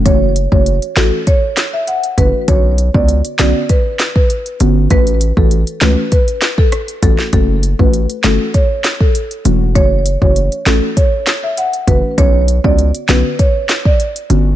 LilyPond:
<<
  \new Staff \with { instrumentName = "Marimba" } { \time 4/4 \key fis \phrygian \tempo 4 = 99 cis''16 r8 cis''16 r8 a'16 r16 cis''16 r8 e''16 fis''16 r16 b'16 r16 | cis''16 r8 d''16 r8 d''16 r16 b'16 r8 b'16 r4 | b'16 r8 a'16 r8 b'16 r16 b'16 r8 a'16 r8 a'16 r16 | a'16 r8 b'16 r8 a'16 r16 cis''16 r8 a'16 r4 |
cis''16 r8 cis''16 r8 a'16 r16 cis''16 r8 e''16 fis''16 r16 b'16 r16 | cis''16 r8 d''16 r8 b'16 r16 cis''16 r8 d''16 r4 | }
  \new Staff \with { instrumentName = "Synth stab" } { \time 4/4 \key fis \phrygian <e a cis' fis'>16 r8 <e a cis' fis'>16 r8 <e a cis' fis'>16 r4. r16 <e a cis' fis'>8 | <d b cis' fis'>16 r8 <d b cis' fis'>16 r8 <d b cis' fis'>16 r4. r16 <d b cis' fis'>8 | <e a cis' fis'>16 r8 <e a cis' fis'>16 r8 <e a cis' fis'>16 r4. r16 <e a cis' fis'>8 | <e a cis' fis'>16 r8 <e a cis' fis'>16 r8 <e a cis' fis'>16 r4. r16 <e a cis' fis'>8 |
<e a cis' fis'>16 r8 <e a cis' fis'>16 r8 <e a cis' fis'>16 r4. r16 <e a cis' fis'>8 | <d b cis' fis'>16 r8 <d b cis' fis'>16 r8 <d b cis' fis'>16 r4. r16 <d b cis' fis'>8 | }
  \new Staff \with { instrumentName = "808-style bass" } { \clef bass \time 4/4 \key fis \phrygian fis,,8. fis,,8 r16 a,,16 r4. r16 fis,,16 r16 | b,,8. cis,8 r16 b,,16 r4. r16 g,,8 | a,,8. a,,8 r16 cis,16 r4. r16 a,,16 r16 | fis,,8. a,,8 r16 g,,16 r4. r16 e,,8 |
fis,,8. fis,,8 r16 a,,16 r4. r16 fis,,16 r16 | b,,8. cis,8 r16 b,,16 r4. r16 g,,8 | }
  \new DrumStaff \with { instrumentName = "Drums" } \drummode { \time 4/4 <hh bd>8 hh16 bd16 hh16 hh16 <hc hh sn>8 <hh bd>8 <hc hh sn>8 hh16 hh16 <hh bd>8 | <hh bd>8 hh16 bd16 hh16 hh16 <hc hh sn>8 <hh bd>8 <hc hh sn>16 bd16 hh16 hh16 hh8 | <hh bd>16 hh16 hh16 bd16 hh16 hh16 <hc hh sn>8 <hh bd>16 hh16 <hc hh sn>16 bd16 <hh ss>16 hh16 <hh bd>16 sn16 | <hh bd>8 hh16 bd16 hh16 hh16 <hc hh sn>8 <hh bd>8 <hc hh sn>16 bd16 hh16 hh16 hh8 |
<hh bd>8 hh16 bd16 hh16 hh16 <hc hh sn>8 <hh bd>8 <hc hh sn>8 hh16 hh16 <hh bd>8 | <hh bd>8 hh16 bd16 hh16 hh16 <hc hh sn>8 <hh bd>8 <hc hh sn>16 bd16 hh16 hh16 hh8 | }
>>